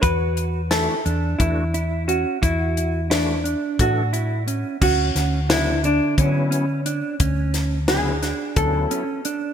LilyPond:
<<
  \new Staff \with { instrumentName = "Hollow-body jazz guitar" } { \time 7/8 \key d \lydian \tempo 4 = 88 b'4 a'4 e'4 fis'8 | e'4 d'4 fis'4. | fis'4 e'8 d'8 cis'4 r8 | r4 gis'4 a'4. | }
  \new Staff \with { instrumentName = "Clean electric guitar" } { \time 7/8 \key d \lydian fis'4 e'8 d'4 e'8 cis'8 | fis'4 e'8 d'4 e'8 cis'8 | cis'4 d'8 d4 cis'8 d'8 | cis'4 d'8 d'4 cis'8 d'8 | }
  \new Staff \with { instrumentName = "Tonewheel organ" } { \time 7/8 \key d \lydian r4 <e a d' fis'>8 r8 <e a d' fis'>8 r4 | r4 <e a d' fis'>8 r8 <e a d' a'>8 r4 | r4 <cis fis b e'>8 r8 <fis b cis' e'>8 r4 | r4 <cis fis b e'>8 r8 <fis b cis' e'>8 r4 | }
  \new Staff \with { instrumentName = "Fingered electric bass" } { \clef bass \time 7/8 \key d \lydian e,4. e,8 e,4. | e,2 a,4. | d,8 d,4. d4. | d,2 d,8 r4 | }
  \new DrumStaff \with { instrumentName = "Drums" } \drummode { \time 7/8 <hh bd>8 hh8 <hh sn>8 hh8 <hh bd>8 hh8 hh8 | <hh bd>8 hh8 <hh sn>8 hh8 <hh bd>8 hh8 hh8 | <cymc bd>8 <hh sn>8 <hh sn>8 hh8 <hh bd>8 hh8 hh8 | <hh bd>8 <hh sn>8 <hh sn>8 <hh sn>8 <hh bd>8 hh8 hh8 | }
>>